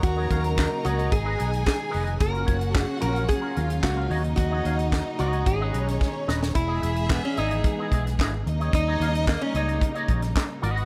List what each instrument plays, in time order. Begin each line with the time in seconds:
Already playing: string section C#3 F#3 A#3 D#4, violin section A#4 A#5
0.03 fingered electric bass D#2, resonator guitar played with a steel bar F#4, kick, closed hi-hat
0.16 clean electric guitar F#4 C#5 D#5
0.30 fingered electric bass D#2, clean electric guitar F#4 C#5 F5, kick, closed hi-hat
0.44 muted clean electric guitar stroke, closed hi-hat
0.58 muted clean electric guitar stroke, kick, snare, clap
0.71 muted clean electric guitar stroke
0.84 fingered electric bass C#2, clean electric guitar F#4 C#5 D#5, resonator guitar played with a steel bar F#4, closed hi-hat
0.98 clean electric guitar F#4 C#5 D#5, closed hi-hat
1.12 fingered electric bass G#1, string section B2 D#3 G#3, violin section G#4 G#5, resonator guitar played with a steel bar G#4, kick, closed hi-hat
1.25 clean electric guitar G#4 B4 D#5
1.37 fingered electric bass B1, clean electric guitar G#4 B4 D#5, closed hi-hat
1.51 muted clean electric guitar stroke, closed hi-hat
1.64 resonator guitar played with a steel bar G#4, muted clean electric guitar stroke, kick, snare, clap
1.77 muted clean electric guitar stroke
1.90 clean electric guitar G#4 B4 D#5, open hi-hat
1.94 fingered electric bass F1
2.04 clean electric guitar G#4 B4 D#5, closed hi-hat
2.19 fingered electric bass F#1, string section C#3 F#3 A#3 C#4, violin section F#4 F#5, resonator guitar played with a steel bar A#4, muted clean electric guitar stroke, kick, closed hi-hat
2.32 clean electric guitar C#4 F4 A#4, closed hi-hat
2.45 fingered electric bass F#1, clean electric guitar C#4 F4 C#5, kick, closed hi-hat
2.59 muted clean electric guitar stroke, closed hi-hat
2.73 resonator guitar played with a steel bar G#4, muted clean electric guitar stroke, kick, snare, clap
2.87 muted clean electric guitar stroke
3.00 fingered electric bass A#1, clean electric guitar C#4 F4 A#4, resonator guitar played with a steel bar A#4, closed hi-hat
3.13 clean electric guitar C#4 F4 A#4, closed hi-hat
3.28 resonator guitar played with a steel bar G#4, muted clean electric guitar stroke, kick, closed hi-hat
3.41 clean electric guitar C#4 F4 A#4
3.55 fingered electric bass D#2, clean electric guitar C#4 F4 A#4, violin section F4 F5, closed hi-hat
3.69 muted clean electric guitar stroke, closed hi-hat
3.82 fingered electric bass C#2, resonator guitar played with a steel bar F#4, muted clean electric guitar stroke, kick, snare, clap
3.96 clean electric guitar C#4 F4 A#4
4.10 fingered electric bass D#2, string section D#4, violin section D#4 D#5, clean electric guitar F#4 C#5 D#5, open hi-hat
4.24 muted clean electric guitar stroke, closed hi-hat
4.36 fingered electric bass D#2, resonator guitar played with a steel bar F#4, muted clean electric guitar stroke, kick, closed hi-hat
4.51 clean electric guitar F#4 C#5 D#5
4.65 fingered electric bass D#2, clean electric guitar F#4 C#5 F5, closed hi-hat
4.79 closed hi-hat
4.92 muted clean electric guitar stroke, kick, snare, clap
5.06 muted clean electric guitar stroke
5.19 fingered electric bass C#2, resonator guitar played with a steel bar F#4, clean electric guitar F#4 C#5 D#5, closed hi-hat
5.33 clean electric guitar F#4 C#5 D#5, closed hi-hat
5.46 fingered electric bass G#1, string section B2 D#3 G#3, violin section C#4 C#5, resonator guitar played with a steel bar G#4, muted clean electric guitar stroke, kick, closed hi-hat
5.61 clean electric guitar G#4 B4 D#5
5.73 fingered electric bass B1, clean electric guitar G#4 B4 D#5, closed hi-hat
5.88 muted clean electric guitar stroke, snare, closed hi-hat
6.01 kick, snare
6.15 muted clean electric guitar stroke
6.27 fingered electric bass D#1, clean electric guitar G#4 B4 D#5, snare
6.41 muted clean electric guitar stroke, snare
6.54 fingered electric bass E1, string section E3 G#3 B3 G#4, resonator guitar played with a steel bar E4, violin section G#4 E5, muted clean electric guitar stroke, kick, closed hi-hat
6.68 clean electric guitar E4 G#4 D#5
6.81 fingered electric bass E1, clean electric guitar E4 G#4 E5, closed hi-hat
6.96 muted clean electric guitar stroke, closed hi-hat
7.10 resonator guitar played with a steel bar B3, muted clean electric guitar stroke, kick, snare, clap
7.23 resonator guitar played with a steel bar C#4, muted clean electric guitar stroke
7.37 fingered electric bass G#1, resonator guitar played with a steel bar D#4, clean electric guitar E4 G#4 D#5, closed hi-hat
7.51 clean electric guitar E4 G#4 D#5, closed hi-hat
7.64 muted clean electric guitar stroke, kick, closed hi-hat
7.79 clean electric guitar E4 G#4 D#5
7.92 fingered electric bass B1, clean electric guitar E4 G#4 D#5, kick, closed hi-hat
8.07 snare, closed hi-hat
8.19 fingered electric bass G#1, clean electric guitar E4 G#4 D#5, kick, snare, clap
8.33 muted clean electric guitar stroke
8.45 fingered electric bass D#2, string section C#3 G3 A#3 D#4, violin section D#4 D#5, muted clean electric guitar stroke, closed hi-hat
8.60 clean electric guitar G4 C#5 D#5, closed hi-hat
8.73 fingered electric bass D#2, resonator guitar played with a steel bar D#4, kick, closed hi-hat
8.87 clean electric guitar G4 C#5 D#5
9.00 fingered electric bass D#2, clean electric guitar G4 C#5 F5, closed hi-hat
9.14 muted clean electric guitar stroke, closed hi-hat
9.27 resonator guitar played with a steel bar A#3, muted clean electric guitar stroke, kick, snare, clap
9.41 resonator guitar played with a steel bar C#4, muted clean electric guitar stroke
9.54 fingered electric bass C#2, resonator guitar played with a steel bar D#4, clean electric guitar G4 C#5 D#5, closed hi-hat
9.68 clean electric guitar G4 C#5 D#5, closed hi-hat
9.81 muted clean electric guitar stroke, kick, closed hi-hat
9.95 clean electric guitar G4 C#5 D#5, closed hi-hat
10.08 fingered electric bass A#1, clean electric guitar G4 C#5 D#5, kick, closed hi-hat
10.22 muted clean electric guitar stroke, snare, closed hi-hat
10.35 muted clean electric guitar stroke, kick, snare, clap
10.48 muted clean electric guitar stroke
10.62 fingered electric bass G#1, string section D#3 G#3 B3 F#4, clean electric guitar F#4 B4 D#5, violin section F#4 F#5, closed hi-hat
10.76 clean electric guitar F#4 B4 D#5, closed hi-hat